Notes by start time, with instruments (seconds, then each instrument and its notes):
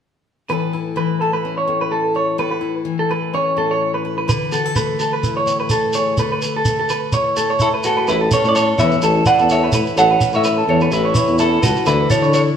0.49 steel-string acoustic guitar A2 E3 A4, clean electric guitar B4, muted steel-string acoustic guitar stroke
0.73 steel-string acoustic guitar E4
0.96 steel-string acoustic guitar E3, clean electric guitar B4
1.21 clean electric guitar A4, steel-string acoustic guitar A4
1.33 clean electric guitar B4
1.45 steel-string acoustic guitar C#4
1.58 clean electric guitar C#5
1.67 steel-string acoustic guitar A2
1.81 clean electric guitar B4
1.92 clean electric guitar A4
2.15 steel-string acoustic guitar A4, clean electric guitar C#5
2.38 steel-string acoustic guitar A2 A4, clean electric guitar B4
2.51 clean electric guitar B4
2.61 steel-string acoustic guitar E4
2.85 steel-string acoustic guitar E3
2.99 clean electric guitar A4
3.11 steel-string acoustic guitar A4, clean electric guitar B4
3.34 steel-string acoustic guitar C#4, clean electric guitar C#5
3.57 steel-string acoustic guitar A2, clean electric guitar A4
3.71 clean electric guitar C#5
3.94 clean electric guitar B4
4.05 steel-string acoustic guitar A4
4.18 clean electric guitar B4
4.28 steel-string acoustic guitar D3 A4, clean electric guitar B4, shekere
4.52 steel-string acoustic guitar F#4, clean electric guitar A4, shekere
4.66 steel-string acoustic guitar A4
4.76 steel-string acoustic guitar A3, clean electric guitar B4, shekere
4.99 steel-string acoustic guitar A4, clean electric guitar A4, shekere
5.13 clean electric guitar B4
5.23 steel-string acoustic guitar E4, shekere
5.37 clean electric guitar C#5
5.46 steel-string acoustic guitar A2, shekere
5.60 clean electric guitar B4
5.70 clean electric guitar A4, shekere
5.93 steel-string acoustic guitar G#4, clean electric guitar C#5, shekere
6.17 steel-string acoustic guitar D3 A4, clean electric guitar B4, shekere
6.32 clean electric guitar B4
6.42 steel-string acoustic guitar A4, shekere
6.57 clean electric guitar A4
6.65 steel-string acoustic guitar A3, shekere
6.80 clean electric guitar A4
6.89 steel-string acoustic guitar A4, clean electric guitar B4, shekere
7.12 steel-string acoustic guitar E4, clean electric guitar C#5, shekere
7.36 steel-string acoustic guitar A2, clean electric guitar A4, shekere
7.50 clean electric guitar C#5
7.60 clean electric guitar E4 A4, shekere
7.74 clean electric guitar B4
7.83 clean electric guitar F#4 A4, steel-string acoustic guitar G#4, shekere
7.97 clean electric guitar B4
8.07 tuba A1, steel-string acoustic guitar A2, clean electric guitar E4 B4, muted steel-string acoustic guitar stroke, shekere
8.21 clean electric guitar A4
8.31 steel-string acoustic guitar C#4, clean electric guitar A4 C#5, shekere
8.44 tuba A2, clean electric guitar C#5, shekere
8.49 clean electric guitar D5
8.55 clean electric guitar A4 C#5, muted steel-string acoustic guitar stroke, shekere
8.78 tuba E2, steel-string acoustic guitar E3, clean electric guitar B4 C#5 E5, shekere
8.92 shekere
9.02 tuba A1, steel-string acoustic guitar E4, clean electric guitar A4, shekere
9.26 steel-string acoustic guitar A2, clean electric guitar B4 D5 F#5, shekere
9.39 tuba E2, clean electric guitar A4, shekere
9.49 clean electric guitar C#5 E5, shekere
9.64 clean electric guitar B4
9.72 tuba A2, clean electric guitar B4, shekere
9.87 shekere
9.96 tuba A1, steel-string acoustic guitar A2 A4, clean electric guitar A4 C#5 F#5, shekere
10.11 clean electric guitar B4
10.21 steel-string acoustic guitar C#4, shekere
10.33 tuba A2, clean electric guitar C#5 E5, shekere
10.44 steel-string acoustic guitar A4, clean electric guitar B4, shekere
10.58 clean electric guitar A4
10.67 tuba E2, steel-string acoustic guitar E3, clean electric guitar A4 C#5
10.81 clean electric guitar B4, shekere
10.91 tuba A1, steel-string acoustic guitar E4, clean electric guitar E4 B4, shekere
11.05 clean electric guitar C#5
11.15 steel-string acoustic guitar A2, clean electric guitar C#5, shekere
11.27 tuba E2, shekere
11.38 steel-string acoustic guitar C#4, clean electric guitar E4 A4, shekere
11.62 tuba C#2, clean electric guitar F#4 A4 B4, shekere
11.76 shekere
11.85 tuba D2, steel-string acoustic guitar D3 A4, clean electric guitar E4 B4, shekere
12.10 steel-string acoustic guitar E4, clean electric guitar A4 C#5, shekere
12.22 tuba D3, clean electric guitar C#5, shekere
12.33 clean electric guitar A4 C#5, shekere